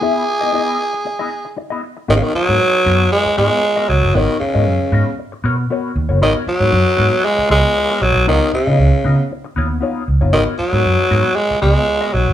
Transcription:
<<
  \new Staff \with { instrumentName = "Clean electric guitar" } { \time 4/4 \key gis \minor \tempo 4 = 116 <b e' gis' e''>8 r16 <b e' gis' dis''>16 <b e' gis' dis''>8 r8. <b e' gis' dis''>8 r8 <b e' gis' dis''>8 r16 | <b fis' ais' cis''>8 r16 <b fis' ais' cis''>16 r8 <b fis' ais' cis''>16 r8. <b fis' ais' cis''>8 r16 <b fis' ais' dis''>8 r16 | <b fis' ais' cis''>8 r16 <b fis' ais' dis''>16 r8 <b fis' ais' dis''>16 r8. <b fis' ais' cis''>8 <b fis' ais' cis''>8 r16 <b fis' ais' cis''>16 | <b fis' ais' cis''>8 r16 <b fis' ais' cis''>16 r8 <b fis' ais' cis''>16 r8. <b fis' ais' cis''>8 r16 <b fis' ais' dis''>8 r16 |
<b dis' eis' cis''>8 r16 <b dis' eis' dis''>16 r8 <b dis' eis' dis''>16 r8. <b dis' eis' cis''>8 <b dis' eis' cis''>8 r16 <b dis' eis' cis''>16 | <b fis' ais' cis''>8 r16 <b fis' ais' cis''>16 r8 <b fis' ais' cis''>16 r8. <b fis' ais' cis''>8 r16 <b fis' ais' dis''>8 r16 | }
  \new Staff \with { instrumentName = "Tenor saxophone" } { \clef bass \time 4/4 \key gis \minor gis'2. r4 | dis32 cis32 dis16 fis4. gis8 gis4 fis8 | dis8 cis4. r2 | dis8 fis4. gis8 gis4 fis8 |
dis8 cis4. r2 | dis8 fis4. gis8 gis4 fis8 | }
  \new Staff \with { instrumentName = "Fingered electric bass" } { \clef bass \time 4/4 \key gis \minor r1 | gis,,16 r8 gis,16 r8 fis,8 r8 gis,16 r8. cis,16 fis,,16 | gis,,16 r8 gis,16 fis,16 r16 gis,16 r8. b,8 r8 dis,16 fis,,16 | gis,,16 r8 gis,16 fis,16 r16 gis,16 r8. cis,16 r8. b,,16 b,,16 |
cis,16 r8 cis16 cis,16 r16 cis16 r8. dis,8 r8 cis,16 fis,,16 | gis,,16 r8 gis,16 fis,16 r16 gis,16 r8. cis,16 r8. b,,16 fis,,16 | }
>>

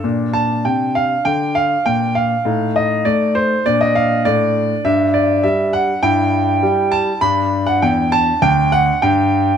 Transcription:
<<
  \new Staff \with { instrumentName = "Grand piano" } { \time 4/4 \key bes \major \tempo 4 = 100 << { r8 a''8 g''8 f''8 g''8 f''8 g''8 f''8~ | f''8 ees''8 d''8 c''8 d''16 ees''16 f''8 d''4 | \key g \major e''8 d''8 e''8 fis''8 g''4. a''8 | b''8. fis''16 g''8 a''8 g''8 fis''8 g''4 | } \\ { d'1 | ees'2 d'2 | d'2 e'2 | d'1 | } >> }
  \new Staff \with { instrumentName = "Grand piano" } { \clef bass \time 4/4 \key bes \major bes,4 c4 d4 bes,4 | a,4 a4 bes,4 a,4 | \key g \major g,4 g4 g,4 g4 | g,4 e,4 d,4 g,4 | }
>>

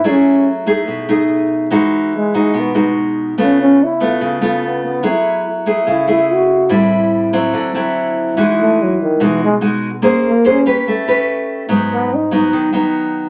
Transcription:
<<
  \new Staff \with { instrumentName = "Nylon-string guitar" } { \time 4/4 \key e \major \tempo 4 = 144 << { <a e' gis'>4. <a dis' gis'>4 <a dis' gis'>4. | <gis dis' fis'>4 r8 <gis dis' fis'>4 <gis dis' fis'>4. | <a b eis'>4 r8 <a b eis'>4 <a b eis'>4. | <a e' gis'>4 r8 <a e' gis'>4 <a e' gis'>4. |
<g c' e'>4. <fis c' e'>4 <fis c' e'>4. | <gis dis' fis'>4. r8 <gis dis' fis'>8 r8 <gis dis' fis'>8 r8 | <cis' gis' bis'>8 r8 <cis' gis' bis'>8 <cis' g' b'>4 <cis' g' b'>4. | <fis b dis'>4 r8 <fis b dis'>4 <fis b dis'>4. | } \\ { fis2 b,2 | e2 b,2 | cis2 cis2 | fis2 cis2 |
a,2 d2 | e2 b,2 | ais2 a2 | gis,2 dis2 | } >> }
  \new Staff \with { instrumentName = "Trombone" } { \time 4/4 \key e \major cis'4 r2. | r4 gis8 gis8 b4 r4 | cis'8 cis'8 e'4 r4 b8 b8 | e'4 r4 e'8 e'8 fis'4 |
r1 | r8 a8 fis8 dis8 e8 gis8 r4 | r8 ais8 cis'8 r2 r8 | r8 b8 dis'8 r2 r8 | }
>>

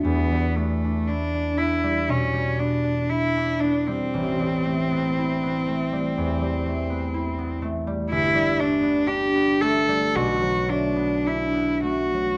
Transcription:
<<
  \new Staff \with { instrumentName = "Cello" } { \time 4/4 \key e \minor \tempo 4 = 59 b8 a8 d'8 e'8 cis'8 d'8 e'8 d'16 c'16~ | c'2.~ c'8 r8 | e'8 d'8 g'8 a'8 fis'8 d'8 e'8 fis'8 | }
  \new Staff \with { instrumentName = "Harp" } { \time 4/4 \key e \minor <e, b d' b'>16 g16 b16 d'16 e'16 d'16 b16 g16 b,16 g16 b16 d'16 e'16 d'16 b16 g16 | a,,16 g16 a16 b16 e'16 b16 a16 g16 e,16 g16 a16 b16 e'16 b16 a16 g16 | g,,16 g16 a16 b16 d'16 b16 a16 g16 b,,16 fis16 a16 b16 d'16 b16 a16 fis16 | }
>>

